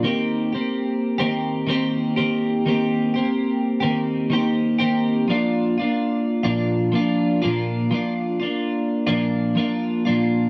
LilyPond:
\new Staff \with { instrumentName = "Clean electric guitar" } { \time 4/4 \key bes \major \tempo 4 = 91 <ees bes c' g'>8. <bes c' g'>4 <ees bes c' g'>8. <ees bes c' g'>8. <ees bes c' g'>8. | <ees bes c' g'>8. <bes c' g'>4 <ees bes c' g'>8. <ees bes c' g'>8. <ees bes c' g'>8. | <f bes d' f'>8. <bes d' f'>4 <bes, f bes d' f'>8. <f bes d' f'>8. <bes, f bes d' f'>8. | <f bes d' f'>8. <bes d' f'>4 <bes, f bes d' f'>8. <f bes d' f'>8. <bes, f bes d' f'>8. | }